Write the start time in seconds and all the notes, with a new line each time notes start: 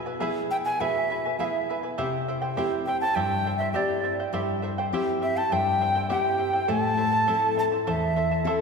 Already playing: B2
0.06 E4 B4 G#5
0.20 B3 E4 G#4 B4 E5 G#5
0.51 E4 B4 E5 G5 G#5
0.65 E4 B4 G#5
0.80 B2 E4 G#4 B4 E5 G#5
1.10 E4 B4 E5 G#5
1.25 E4 B4 G#5
1.39 B3 E4 G#4 B4 E5 F5 G#5
1.44 E5
1.70 E4 B4 E5 G#5
1.83 E4 B4 G#5
1.98 C3 E4 G4 C5 E5 G5
2.28 E4 C5 E5 G5
2.42 E4 C5 G5
2.57 C4 E4 G4 C5 E5 G5
2.86 E4 C5 E5 G5
3.01 E4 C5 G5 A5
3.15 G2 E4 G4 C5 E5 G5
3.46 E4 C5 E5 G5
3.58 C5 E5 G5
3.62 E4
3.72 C4 E4 G4 C5 D5 E5 G5
4.03 E4 C5 E5 G5
4.20 E4 C5 G5
4.33 G2 E4 G4 C5 E5 G5
4.62 E4 C5 E5 G5
4.78 E4 C5 G5
4.93 C4 E4 G4 C5 E5 G5
5.22 E4 C5 E5 G5
5.37 E4 C5 G5 A5
5.52 G2 E4 G4 C5 E5 G5
5.81 E4 C5 E5 G5
5.95 E4 C5 G5
6.09 C4 E4 G4 C5 E5 G5
6.38 E4 C5 E5 G5
6.53 E4 C5 G5
6.68 A2 E4 A4 C5 E5 A5
6.98 E4 C5 E5 A5
7.12 E4 C5 A5
7.27 C4 E4 A4 C5 E5 A5
7.57 E4 C5 E5 A5
7.72 E4 C5 A5
7.87 E2 E4 A4 C5 E5 A5
8.16 E4 C5 E5 A5
8.31 E4 C5 A5
8.44 C4 E4 A4 C5 E5 A5